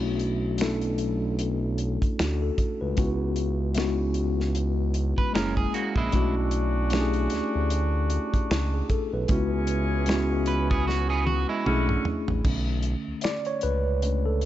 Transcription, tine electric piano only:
0.00 0.47 A3 medium
0.00 0.48 C#4 medium
0.00 0.48 D4 medium
0.00 0.48 E4 medium
0.00 0.49 F#4 medium
0.60 1.89 A3 medium
0.60 1.90 C#4 medium
0.60 1.90 D4 medium
0.60 1.90 E4 medium
0.60 1.91 A4 medium
2.19 2.41 F#4 medium
2.42 2.79 A4 medium
2.81 3.18 B4 medium
2.96 3.63 G#3 medium
2.96 3.63 B3 medium
2.96 3.64 C#4 medium
2.96 3.64 E4 medium
2.96 3.64 F#4 medium
3.75 5.05 G#3 medium
3.75 5.06 B3 medium
3.75 5.06 C#4 medium
3.75 3.85 D#4 medium
3.75 5.07 F#4 medium
3.84 5.10 E4 medium
5.33 6.00 G#3 medium
5.33 6.00 A#3 medium
5.33 6.01 C#4 medium
5.33 6.01 E4 medium
5.33 6.01 G#4 medium
6.12 6.79 A3 medium
6.12 6.79 C#4 medium
6.12 6.80 D4 medium
6.12 6.80 E4 medium
6.12 6.80 F#4 medium
6.92 8.21 A3 medium
6.92 8.21 C#4 medium
6.92 8.22 D4 medium
6.92 8.22 E4 medium
6.92 7.01 G4 medium
7.01 8.26 G#4 medium
8.74 8.89 G#4 medium
8.90 9.12 A4 medium
9.13 9.50 B4 medium
9.29 9.95 G#3 medium
9.29 9.95 B3 medium
9.29 9.96 C#4 medium
9.29 9.96 E4 medium
9.29 9.97 F#4 medium
10.07 11.37 G#3 medium
10.07 11.37 B3 medium
10.07 11.38 C#4 medium
10.07 11.38 E4 medium
10.07 11.38 F#4 medium
11.65 12.32 A3 medium
11.65 12.32 C#4 medium
11.65 12.32 D4 medium
11.65 12.33 E4 medium
11.65 12.33 G#4 medium
12.45 13.59 D3 soft
12.45 13.60 A3 soft
12.45 13.60 C#4 medium
13.24 13.47 D5 medium
13.47 13.64 C#5 loud
13.63 14.27 B4 medium
14.02 14.38 A3 soft
14.02 14.38 C#4 soft
14.02 14.38 D4 soft
14.26 14.45 A4 medium

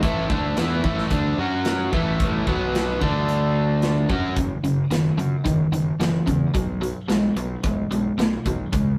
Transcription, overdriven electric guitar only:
0.03 0.29 A2 medium
0.03 0.29 E3 medium
0.03 0.29 A3 loud
0.30 0.56 D3 medium
0.30 0.57 A3 medium
0.30 0.57 D4 loud
0.57 0.83 E3 medium
0.57 0.84 B3 medium
0.57 0.84 E4 loud
0.84 1.10 A2 medium
0.84 1.11 E3 medium
0.84 1.10 A3 medium
1.11 1.37 D3 loud
1.11 1.38 A3 medium
1.11 1.38 D4 loud
1.39 1.92 F#3 loud
1.39 1.93 C#4 medium
1.39 1.93 F#4 medium
1.92 2.46 A2 medium
1.92 2.46 E3 loud
1.92 2.47 A3 loud
2.47 3.01 B2 medium
2.47 3.01 F#3 medium
2.47 3.01 B3 loud
3.01 4.09 D3 medium
3.01 4.09 A3 medium
3.01 4.10 D4 medium
4.09 4.36 F#3 medium
4.09 4.36 C#4 loud
4.09 4.37 F#4 medium
4.37 4.61 F#2 medium
4.37 4.62 C#3 medium
4.64 4.89 F#2 medium
4.64 4.89 C#3 medium
4.91 5.16 F#2 medium
4.91 5.16 D#3 medium
5.18 5.43 F#2 medium
5.18 5.43 C#3 medium
5.45 5.70 F#2 medium
5.45 5.70 D#3 loud
5.73 5.98 F#2 medium
5.73 5.98 D#3 medium
6.00 6.25 F#2 medium
6.00 6.25 E3 medium
6.27 6.52 F#2 medium
6.27 6.52 C#3 medium
6.54 6.79 B2 medium
6.54 6.80 F#3 medium
6.81 7.07 B2 medium
6.81 7.07 F#3 medium
7.08 7.34 B2 medium
7.08 7.34 G#3 loud
7.37 7.61 B2 medium
7.37 7.62 F#3 medium
7.64 7.89 B2 medium
7.64 7.89 G#3 medium
7.91 8.16 B2 medium
7.91 8.16 G#3 medium
8.18 8.43 B2 medium
8.18 8.43 A3 loud
8.46 8.71 B2 medium
8.46 8.71 F#3 medium
8.73 8.98 C#3 medium
8.73 8.98 G#3 medium

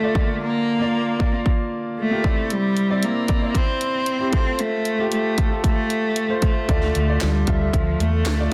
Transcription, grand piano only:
0.00 0.17 D3 medium
0.00 0.18 A3 medium
0.00 0.03 F4 medium
0.00 0.15 F4 medium
0.00 0.04 D5 medium
0.00 0.16 D5 medium
0.00 0.18 F5 medium
0.15 0.90 D3 medium
0.15 0.75 A#3 medium
0.15 0.75 F4 medium
0.15 0.76 D5 medium
0.79 1.16 A#3 medium
0.79 1.16 F4 medium
0.79 1.17 D5 medium
1.19 1.31 A#3 medium
1.19 1.31 F4 medium
1.19 1.32 D5 medium
1.32 2.04 A#3 medium
1.32 2.04 F4 medium
1.32 2.05 F5 medium
2.11 2.24 A#3 medium
2.11 2.24 F4 medium
2.11 2.25 G4 medium
2.23 2.99 C3 medium
2.23 2.83 C4 medium
2.23 2.84 E4 medium
2.23 2.84 D5 medium
2.89 3.25 C4 medium
2.89 3.25 E4 medium
2.89 3.26 D5 medium
3.27 3.39 C4 medium
3.27 3.40 E4 medium
3.27 3.41 D5 medium
3.41 4.13 C4 medium
3.41 4.13 E4 medium
3.41 4.14 D5 medium
4.19 4.33 C4 medium
4.19 4.33 E4 medium
4.19 4.34 G4 medium
4.32 4.92 A3 medium
4.32 4.92 F4 medium
4.32 4.93 C5 medium
4.98 5.34 A3 medium
4.98 5.35 F4 medium
4.98 5.35 G4 medium
5.37 5.49 A3 medium
5.37 5.50 F4 medium
5.37 5.50 A4 medium
5.50 6.22 A3 medium
5.50 6.23 F4 soft
5.50 6.23 A4 medium
6.28 6.65 A3 medium
6.28 6.65 F4 medium
6.28 6.65 C5 medium
6.68 7.43 D3 medium
6.68 7.04 A3 medium
6.68 7.04 F4 medium
6.68 7.05 D5 medium
7.08 7.43 A3 medium
7.08 7.44 F4 medium
7.08 7.44 D5 medium
7.47 7.58 A3 medium
7.47 7.58 F4 medium
7.47 7.59 E5 medium
7.60 8.31 A3 medium
7.60 8.31 F4 soft
7.60 8.32 E5 medium
8.38 8.51 A3 medium
8.38 8.51 F4 medium
8.38 8.52 D5 medium

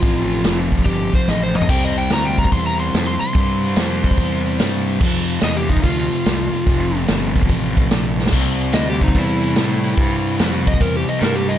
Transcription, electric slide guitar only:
0.00 0.57 F4 loud
0.85 1.13 G4 medium
1.15 1.28 C5 medium
1.29 1.42 D#5 medium
1.43 1.56 C5 medium
1.56 1.69 D#5 medium
1.70 1.83 G5 medium
1.84 1.97 D#5 medium
1.98 2.11 G5 medium
2.13 2.25 A#5 medium
2.25 2.38 G5 medium
2.39 2.52 A#5 medium
2.53 2.66 C6 medium
2.67 2.79 A#5 medium
2.80 2.93 C6 medium
3.07 3.20 C6 loud
3.21 4.42 C6 medium
5.44 5.56 D#5 loud
5.57 5.70 G4 loud
5.69 5.83 D#4 loud
5.82 7.03 F4 loud
8.74 8.87 D#5 loud
8.90 9.02 G4 loud
9.03 9.15 D#4 medium
9.19 10.38 E4 loud
10.68 10.81 D#5 loud
10.81 10.94 A#4 loud
10.97 11.09 G4 loud
11.09 11.22 D#5 medium
11.21 11.35 A#4 medium
11.36 11.49 G4 loud
11.49 11.58 D#5 medium

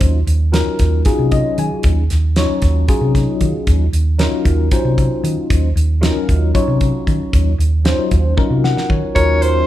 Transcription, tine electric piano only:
0.00 0.19 F#3 medium
0.00 0.19 C#4 medium
0.00 0.19 D#4 medium
0.00 0.19 F4 medium
0.00 0.19 C5 medium
0.52 1.01 F#3 medium
0.52 1.01 C#4 medium
0.52 1.02 D#4 medium
0.52 1.02 F4 medium
0.52 1.02 A#4 medium
1.05 2.02 F#3 medium
1.05 2.02 C#4 medium
1.05 2.02 D#4 medium
1.05 2.02 F4 medium
1.05 2.02 G#4 medium
1.32 1.56 D#5 medium
1.59 1.83 G#5 medium
2.37 2.85 F#3 medium
2.37 2.85 C#4 medium
2.37 2.85 D#4 medium
2.37 2.85 F4 medium
2.37 2.86 C#5 medium
2.88 3.85 F#3 medium
2.88 3.85 C#4 medium
2.88 3.85 D#4 medium
2.88 3.85 F4 medium
2.88 3.85 G#4 medium
4.18 4.67 F#3 medium
4.18 4.67 C#4 medium
4.18 4.67 D#4 medium
4.18 4.68 F4 medium
4.18 4.68 A#4 medium
4.72 5.68 F#3 medium
4.72 5.68 C#4 medium
4.72 5.68 D#4 medium
4.72 5.68 F4 medium
4.72 5.69 C5 medium
6.01 6.50 F#3 medium
6.01 6.50 C#4 medium
6.01 6.50 D#4 medium
6.01 6.50 F4 medium
6.01 6.50 A#4 medium
6.54 7.51 F#3 medium
6.54 7.51 C#4 medium
6.54 7.51 D#4 medium
6.54 7.51 F4 medium
6.54 7.51 C#5 medium
7.85 8.33 F#3 medium
7.85 8.33 C#4 medium
7.85 8.33 D#4 medium
7.85 8.33 F4 medium
7.85 8.34 C5 medium
8.37 9.13 F#3 medium
8.37 9.14 C#4 medium
8.37 9.14 D#4 medium
8.37 9.14 F4 medium
8.37 9.14 A#4 medium
8.64 8.88 F#5 medium
8.90 9.14 C#5 medium
9.14 9.63 F#3 medium
9.14 9.64 C#4 medium
9.14 9.64 D#4 medium
9.14 9.64 F4 medium
9.14 9.64 A#4 medium

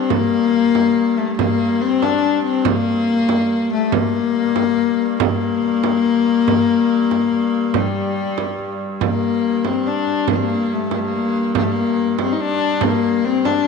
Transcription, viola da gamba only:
0.00 0.11 C4 medium
0.09 1.19 A#3 loud
1.17 1.37 A3 medium
1.37 1.83 A#3 medium
1.81 2.04 C4 medium
2.03 2.44 D4 medium
2.44 2.68 C4 medium
2.66 3.72 A#3 loud
3.73 3.94 A3 medium
3.92 5.20 A#3 medium
5.21 7.78 A#3 loud
7.76 8.81 G3 medium
9.03 9.67 A#3 medium
9.66 9.89 C4 medium
9.87 10.29 D4 medium
10.31 10.37 A#3 medium
10.35 10.45 C4 medium
10.43 10.74 A#3 medium
10.73 10.95 A3 medium
10.94 11.00 A#3 medium
10.98 11.08 A3 medium
11.07 11.56 A#3 medium
11.56 11.65 A#3 medium
11.63 11.73 A3 medium
11.71 12.20 A#3 medium
12.20 12.34 C4 medium
12.32 12.42 D#4 medium
12.40 12.85 D4 medium
12.83 13.26 A#3 medium
13.24 13.46 C4 medium
13.45 13.67 D4 medium

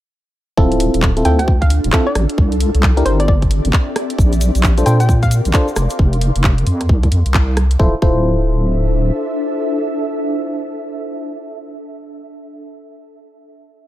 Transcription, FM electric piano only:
0.57 1.11 C4 loud
0.57 1.11 E4 medium
0.57 1.11 F4 medium
0.57 1.11 A4 loud
1.17 1.24 C4 medium
1.17 1.24 E4 medium
1.17 1.24 F4 medium
1.17 1.24 A4 medium
1.25 1.38 C4 medium
1.25 1.38 E4 medium
1.25 1.38 F4 medium
1.25 1.38 A4 loud
1.93 2.06 C4 medium
1.93 2.06 E4 medium
1.93 2.06 F4 medium
1.93 2.06 A4 loud
2.97 3.04 D4 medium
2.97 3.04 E4 medium
2.97 3.04 G4 medium
2.97 3.04 A#4 loud
3.05 3.19 D4 medium
3.05 3.19 A#4 medium
4.78 4.85 D4 medium
4.78 4.85 F4 medium
4.78 4.85 A4 medium
4.78 4.85 C5 medium
4.86 4.99 D4 loud
4.86 4.99 F4 medium
4.86 4.99 A4 medium
4.86 4.99 C5 loud
5.54 5.67 D4 medium
5.54 5.67 F4 medium
5.54 5.67 A4 medium
5.54 5.67 C5 loud
7.79 7.94 E4 medium
7.79 7.94 F4 medium
7.79 7.94 A4 medium
7.79 7.94 C5 medium
8.02 11.71 E4 medium
8.02 11.71 F4 medium
8.02 11.71 A4 medium
8.02 11.71 C5 loud

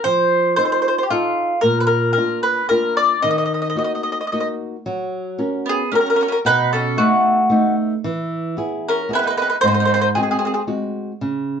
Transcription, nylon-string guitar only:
0.05 0.56 F3 medium
0.58 1.00 D#4 soft
0.58 1.00 F4 soft
0.58 1.00 A4 soft
1.11 1.53 D#4 soft
1.11 1.53 F4 soft
1.11 1.53 A4 soft
1.63 2.14 A#2 medium
2.17 2.59 A#3 soft
2.17 2.59 D4 soft
2.17 2.59 F4 soft
2.70 3.13 A#3 soft
2.70 3.13 D4 soft
2.70 3.13 F4 soft
3.24 3.75 D#3 medium
3.75 4.19 A#3 soft
3.75 4.20 D#4 soft
3.75 4.20 F#4 soft
4.33 4.75 A#3 soft
4.33 4.75 D#4 soft
4.33 4.76 F#4 soft
4.86 5.37 F#3 medium
5.38 5.81 C#4 soft
5.38 5.82 F#4 soft
5.38 5.81 A#4 soft
5.92 6.35 C#4 soft
5.92 6.35 F#4 soft
5.92 6.35 A#4 soft
6.45 6.97 B2 medium
6.97 7.40 A3 soft
6.97 7.40 B3 soft
6.97 7.40 D#4 soft
7.50 7.93 A3 soft
7.50 7.93 B3 soft
7.50 7.94 D#4 medium
8.04 8.56 E3 medium
8.57 8.99 B3 soft
8.57 9.00 E4 soft
8.57 9.00 G#4 soft
9.09 9.51 B3 soft
9.09 9.52 E4 soft
9.09 9.52 G#4 soft
9.63 10.14 G#2 medium
10.16 10.59 G#3 soft
10.16 10.59 C4 soft
10.16 10.59 F#4 soft
10.67 11.11 G#3 soft
10.67 11.11 C4 soft
10.67 11.11 F#4 soft
11.21 11.60 C#3 medium

